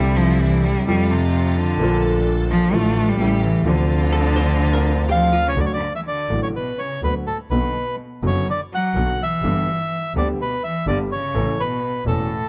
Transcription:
0.00 0.83 C2 medium
0.00 0.83 C3 medium
0.00 0.82 D3 medium
0.00 0.18 G3 medium
0.00 0.83 G3 medium
0.00 0.83 C4 medium
0.00 0.83 D4 medium
0.00 0.83 E4 medium
0.00 0.84 E4 medium
0.16 0.42 F3 loud
0.41 0.66 E3 medium
0.64 0.87 G3 loud
0.86 1.76 F2 medium
0.86 1.75 C3 medium
0.86 1.76 F3 medium
0.86 1.12 G3 loud
0.86 1.76 A3 medium
0.86 1.77 A3 soft
0.86 1.76 C4 medium
0.86 1.76 F4 medium
0.86 1.77 F4 medium
1.11 1.60 C3 medium
1.59 2.27 D3 medium
1.79 2.69 A#1 medium
1.79 2.69 A#2 medium
1.79 2.68 D3 medium
1.79 2.68 A3 medium
1.79 2.69 A#3 medium
1.79 2.69 D4 medium
1.79 2.69 A4 medium
1.83 2.70 F4 medium
2.51 2.76 F3 loud
2.71 3.17 A1 medium
2.71 3.18 A1 medium
2.71 3.17 A2 medium
2.71 3.16 D3 medium
2.71 3.17 F3 medium
2.71 3.17 A3 medium
2.71 3.10 A3 loud
2.71 3.17 D4 medium
2.71 3.17 F4 medium
2.71 3.18 F4 medium
3.09 3.46 G3 loud
3.17 3.64 A1 medium
3.17 3.64 A2 medium
3.17 3.63 C#3 medium
3.17 3.64 G3 medium
3.17 3.64 A3 medium
3.17 3.64 C#4 medium
3.17 3.65 E4 medium
3.17 3.64 G4 medium
3.44 3.69 E3 medium
3.64 5.47 D2 medium
3.64 5.46 C3 medium
3.64 5.47 D3 medium
3.64 5.09 D3 medium
3.64 5.47 F3 medium
3.64 5.47 C4 medium
3.64 5.47 D4 medium
3.64 5.48 D4 medium
3.64 5.47 F4 medium
4.13 4.36 A4 medium
4.36 4.73 C5 loud
4.73 5.10 A#4 medium
5.09 5.43 F3 medium
5.09 5.32 G4 medium
5.09 5.47 F5 medium
5.33 5.55 F4 medium
5.47 5.57 C#3 medium
5.47 5.59 C#5 medium
5.56 5.77 D2 medium
5.56 5.78 D3 medium
5.56 5.64 D3 soft
5.56 5.77 F#3 soft
5.56 5.77 A3 soft
5.56 5.77 F#4 medium
5.56 5.65 D5 medium
5.64 5.71 C#3 soft
5.64 5.72 C#5 soft
5.72 5.92 D3 medium
5.72 5.93 D5 medium
5.94 5.99 E3 soft
5.94 6.01 E5 medium
6.05 6.39 D3 soft
6.05 6.40 D5 medium
6.29 6.50 A1 medium
6.29 6.50 A2 medium
6.29 6.50 D3 soft
6.29 6.50 F#3 soft
6.29 6.50 A3 soft
6.29 6.51 F#4 soft
6.43 6.48 C#3 soft
6.43 6.48 C#5 soft
6.55 6.77 B2 medium
6.55 6.80 B4 medium
6.79 7.01 C#3 soft
6.79 7.01 C#5 medium
7.03 7.23 D2 medium
7.03 7.13 B2 soft
7.03 7.23 D3 medium
7.03 7.23 F#3 soft
7.03 7.23 A3 soft
7.03 7.23 F#4 soft
7.03 7.14 B4 medium
7.27 7.38 A2 soft
7.27 7.38 A4 medium
7.50 7.71 B1 medium
7.50 7.72 B1 medium
7.50 7.96 B2 soft
7.50 7.72 B2 medium
7.50 7.71 D3 medium
7.50 7.71 F#3 soft
7.50 7.72 B3 soft
7.50 7.72 F#4 medium
7.50 7.96 B4 soft
8.23 8.43 F#1 medium
8.23 8.43 F#2 medium
8.23 8.47 C#3 medium
8.23 8.43 D3 soft
8.23 8.43 F#3 soft
8.23 8.43 B3 soft
8.23 8.43 F#4 medium
8.27 8.47 C#5 medium
8.48 8.59 D3 medium
8.48 8.61 D5 medium
8.73 9.17 F#3 medium
8.73 9.22 F#5 medium
8.95 9.15 B1 medium
8.95 9.16 B1 medium
8.95 9.16 B2 medium
8.95 9.16 D3 medium
8.95 9.16 F#3 soft
8.95 9.16 B3 soft
8.95 9.16 F#4 medium
9.20 10.12 E3 medium
9.20 10.13 E5 medium
9.42 9.63 G1 medium
9.42 9.64 G1 medium
9.42 9.64 G2 medium
9.42 9.64 D3 medium
9.42 9.64 G3 soft
9.42 9.64 B3 medium
9.42 9.64 G4 medium
10.15 10.35 D2 medium
10.15 10.36 D2 medium
10.15 10.26 D3 medium
10.15 10.36 D3 medium
10.15 10.36 G3 soft
10.15 10.36 B3 soft
10.15 10.36 G4 medium
10.15 10.28 D5 medium
10.39 10.62 B2 medium
10.39 10.63 B4 medium
10.64 10.86 E3 medium
10.64 10.86 E5 medium
10.87 11.07 G1 medium
10.87 11.07 G2 medium
10.87 11.07 D3 soft
10.87 10.98 D3 medium
10.87 11.07 G3 soft
10.87 11.07 B3 soft
10.87 11.08 G4 medium
10.87 10.98 D5 medium
11.11 11.56 C#3 medium
11.11 11.61 C#5 medium
11.34 11.55 A1 medium
11.34 11.55 A2 medium
11.34 11.55 E3 medium
11.34 11.55 A3 soft
11.34 11.55 C#4 soft
11.34 11.55 A4 medium
11.60 12.04 B2 medium
11.60 12.04 B4 medium
12.06 12.27 E1 medium
12.06 12.27 E2 medium
12.06 12.49 A2 medium
12.06 12.27 E3 medium
12.06 12.27 A3 soft
12.06 12.27 C#4 soft
12.06 12.27 A4 medium
12.06 12.49 A4 medium

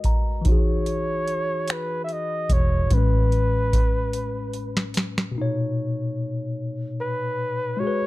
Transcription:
0.00 0.40 G#3 medium
0.00 0.42 F#4 medium
0.00 0.43 A#4 medium
0.00 0.45 B4 medium
0.00 0.48 D#5 medium
0.00 closed hi-hat medium
0.04 0.46 B1 medium
0.04 0.43 A#5 medium
0.04 kick medium
0.41 2.85 E3 medium
0.41 2.86 D#4 medium
0.41 closed hi-hat medium
0.46 2.46 E1 medium
0.46 2.88 F#4 medium
0.46 1.74 C#5 medium
0.46 kick loud
0.52 2.90 G#4 medium
0.86 closed hi-hat soft
1.28 closed hi-hat medium
1.68 finger snap loud
1.68 closed hi-hat medium
1.72 2.03 B4 medium
2.04 2.14 E5 medium
2.09 2.54 D#5 medium
2.09 closed hi-hat soft
2.49 2.87 E1 medium
2.49 2.95 C#5 medium
2.49 kick medium
2.49 closed hi-hat medium
2.87 4.96 A1 loud
2.87 5.30 A2 medium
2.87 5.32 G#3 medium
2.87 kick loud
2.87 closed hi-hat medium
2.93 5.34 C#4 medium
2.93 4.96 B4 medium
2.98 5.35 B4 medium
3.32 closed hi-hat medium
3.73 kick medium
3.73 closed hi-hat medium
4.13 closed hi-hat medium
4.53 closed hi-hat soft
4.77 snare medium
4.94 snare medium
4.94 closed hi-hat medium
5.18 snare medium
5.32 7.76 A#2 medium
5.32 7.75 B2 medium
5.38 7.78 D#4 medium
5.38 7.79 C#5 medium
7.00 7.81 B4 medium
7.77 8.07 G#3 medium
7.77 8.07 F#4 medium
7.77 8.07 C#5 loud
7.84 8.07 G#4 medium
7.84 8.07 B4 medium

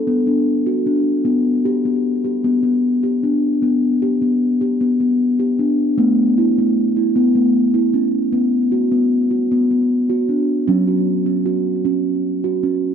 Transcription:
0.00 0.27 A4 medium
0.07 1.01 B3 medium
0.27 0.66 D4 medium
0.67 0.86 F#4 medium
0.86 1.26 D4 medium
1.25 1.65 B3 medium
1.65 1.85 G4 medium
1.85 2.24 B3 medium
2.24 2.64 G4 medium
2.44 2.62 B3 medium
2.63 3.03 B3 medium
3.03 3.23 G4 medium
3.23 3.62 D4 medium
3.62 4.21 B3 medium
4.02 4.22 G4 medium
4.22 4.61 B3 medium
4.61 5.00 G4 medium
4.81 4.99 B3 medium
5.00 5.39 B3 medium
5.39 5.59 G4 medium
5.59 5.98 D4 medium
5.98 6.37 A3 medium
5.98 6.91 B3 medium
6.38 6.57 E4 medium
6.58 6.97 A3 medium
6.97 7.36 E4 medium
7.16 8.09 B3 medium
7.35 7.75 A3 medium
7.74 7.94 E4 medium
7.94 8.33 C#4 medium
8.32 8.72 B3 medium
8.72 8.92 F#4 medium
8.92 9.31 B3 medium
9.31 9.70 F#4 medium
9.51 9.70 B3 medium
9.71 10.10 B3 medium
10.10 10.29 F#4 medium
10.29 10.68 D4 medium
10.68 11.61 F#3 medium
10.68 10.88 C#4 medium
10.88 11.27 F#4 medium
11.26 11.46 C#4 medium
11.46 11.85 F#4 medium
11.85 12.24 C#4 medium
12.44 12.64 F#4 medium
12.63 12.95 C#4 medium

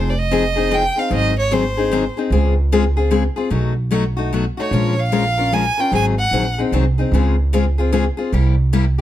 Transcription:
0.00 0.87 F1 medium
0.00 0.12 F3 medium
0.00 0.13 C4 medium
0.00 0.13 D#4 medium
0.00 0.13 G#4 medium
0.00 0.11 C5 medium
0.10 0.20 D5 medium
0.19 0.76 D#5 loud
0.31 0.42 F3 medium
0.31 0.42 C4 medium
0.31 0.43 D#4 medium
0.31 0.43 G#4 medium
0.56 0.70 C4 soft
0.56 0.70 D#4 medium
0.56 0.70 G#4 medium
0.71 0.82 F3 medium
0.71 0.82 C4 medium
0.71 0.83 D#4 medium
0.71 0.83 G#4 loud
0.71 1.01 G5 medium
0.96 1.10 C4 soft
0.96 1.10 D#4 soft
0.96 1.10 G#4 soft
0.96 1.12 F5 medium
1.10 2.07 G#1 medium
1.10 1.32 D#3 medium
1.10 1.32 F#3 medium
1.10 1.32 C4 medium
1.10 1.33 D#4 medium
1.10 1.33 G#4 medium
1.15 1.36 D#5 medium
1.39 1.55 C#5 medium
1.51 1.62 D#3 medium
1.51 1.63 F#3 medium
1.51 1.63 C4 medium
1.51 1.63 D#4 medium
1.51 1.63 G#4 medium
1.51 2.18 C5 medium
1.77 1.91 C4 soft
1.77 1.91 D#4 soft
1.77 1.91 G#4 medium
1.91 2.03 D#3 medium
1.91 2.03 F#3 medium
1.91 2.03 C4 medium
1.91 2.03 D#4 medium
1.91 2.04 G#4 medium
2.17 2.31 C4 soft
2.17 2.31 D#4 medium
2.17 2.31 G#4 medium
2.30 3.27 C#2 medium
2.30 2.53 C#3 medium
2.30 2.53 G#3 medium
2.30 2.53 C4 medium
2.30 2.53 F4 medium
2.30 2.54 G#4 medium
2.72 2.83 C#3 medium
2.72 2.83 G#3 medium
2.72 2.83 C4 medium
2.72 2.83 F4 medium
2.72 2.84 G#4 loud
2.97 3.10 C4 soft
2.97 3.10 F4 medium
2.97 3.10 G#4 medium
3.11 3.22 C#3 medium
3.11 3.23 G#3 medium
3.11 3.23 C4 medium
3.11 3.23 F4 medium
3.11 3.23 G#4 medium
3.36 3.51 C4 soft
3.36 3.51 F4 soft
3.36 3.50 G#4 medium
3.50 4.47 B1 medium
3.50 3.72 B2 medium
3.50 3.73 F#3 medium
3.50 3.73 A3 medium
3.50 3.73 D#4 medium
3.50 3.73 F#4 medium
3.91 4.02 B2 medium
3.91 4.03 F#3 medium
3.91 4.03 A3 medium
3.91 4.03 D#4 medium
3.91 4.03 F#4 loud
4.17 4.32 A3 soft
4.17 4.32 D#4 medium
4.17 4.31 F#4 medium
4.33 4.43 B2 medium
4.33 4.43 F#3 medium
4.33 4.44 A3 medium
4.33 4.44 D#4 medium
4.33 4.44 F#4 medium
4.57 4.73 A3 soft
4.57 4.72 D#4 soft
4.57 4.71 F#4 medium
4.57 5.01 C#5 medium
4.71 5.68 A#1 medium
4.71 4.94 F3 medium
4.71 4.94 G#3 medium
4.71 4.94 C#4 medium
4.71 4.94 F4 medium
4.71 4.94 A#4 medium
5.00 5.55 F5 medium
5.12 5.23 F3 medium
5.12 5.23 G#3 medium
5.12 5.23 C#4 medium
5.12 5.24 F4 medium
5.12 5.24 A#4 medium
5.38 5.52 C#4 soft
5.38 5.52 F4 soft
5.38 5.51 A#4 medium
5.52 5.63 F3 medium
5.52 5.63 G#3 medium
5.52 5.64 C#4 medium
5.52 5.64 F4 medium
5.52 5.64 A#4 medium
5.52 5.81 G#5 medium
5.78 5.92 C#4 soft
5.78 5.92 F4 soft
5.78 5.91 A#4 soft
5.78 5.93 G5 medium
5.92 6.24 G#1 medium
5.92 6.13 D#3 medium
5.92 6.13 F#3 medium
5.92 6.14 C4 medium
5.92 6.14 D#4 medium
5.92 6.14 G#4 medium
5.92 6.05 G#5 medium
6.19 6.55 F#5 medium
6.31 6.66 A#1 medium
6.31 6.44 D#3 medium
6.31 6.44 F#3 medium
6.31 6.44 C4 medium
6.31 6.44 D#4 medium
6.31 6.44 G#4 medium
6.58 6.72 C4 soft
6.58 6.72 D#4 medium
6.58 6.72 G#4 medium
6.72 7.06 C2 medium
6.72 6.84 D#3 medium
6.72 6.84 F#3 medium
6.72 6.84 C4 medium
6.72 6.84 D#4 medium
6.72 6.84 G#4 medium
6.98 7.13 C4 soft
6.98 7.12 D#4 soft
6.98 7.12 G#4 medium
7.11 8.08 C#2 medium
7.11 7.34 C#3 medium
7.11 7.35 G#3 medium
7.11 7.35 C4 medium
7.11 7.35 F4 medium
7.11 7.35 G#4 medium
7.53 7.64 C#3 medium
7.53 7.64 G#3 medium
7.53 7.64 C4 medium
7.53 7.64 F4 medium
7.53 7.65 G#4 medium
7.78 7.92 C4 soft
7.78 7.91 F4 medium
7.78 7.92 G#4 medium
7.92 8.04 C#3 medium
7.92 8.04 G#3 medium
7.92 8.04 C4 medium
7.92 8.04 F4 medium
7.92 8.04 G#4 medium
8.17 8.32 C4 soft
8.17 8.32 F4 soft
8.17 8.31 G#4 medium
8.32 9.01 C2 medium
8.32 8.54 C3 medium
8.32 8.54 G3 medium
8.32 8.54 A#3 medium
8.32 8.55 E4 medium
8.32 8.55 G4 medium
8.73 8.84 C3 medium
8.73 8.84 G3 medium
8.73 8.84 A#3 medium
8.73 8.84 E4 medium
8.73 8.84 G4 medium

